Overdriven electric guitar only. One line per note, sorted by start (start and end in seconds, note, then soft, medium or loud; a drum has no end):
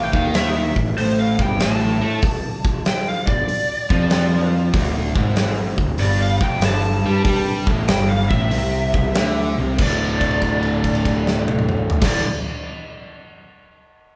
0.00 0.12 A2 medium
0.13 0.74 D#3 loud
0.76 0.92 A2 medium
0.97 1.37 A2 loud
1.39 1.59 G2 loud
1.61 2.01 A2 loud
2.02 2.21 A3 loud
3.28 3.44 G2 medium
3.48 muted overdriven electric guitar stroke medium
3.90 4.73 F3 loud
4.73 5.14 D2 loud
5.16 5.77 G#2 loud
5.79 5.95 D2 medium
5.99 6.40 G2 loud
6.41 6.61 F2 loud
6.63 7.04 G2 loud
7.06 7.23 G3 loud
7.25 7.66 G3 loud
7.68 7.88 A2 loud
7.88 8.29 G2 loud
8.30 8.51 A2 medium
8.51 9.14 C3 loud
9.16 9.56 D3 loud
9.58 9.78 C3 loud
9.79 12.00 D2 medium
9.79 12.02 A2 loud
9.83 12.04 D3 medium
12.00 12.24 D2 medium
12.00 12.25 A2 medium
12.05 12.26 D3 loud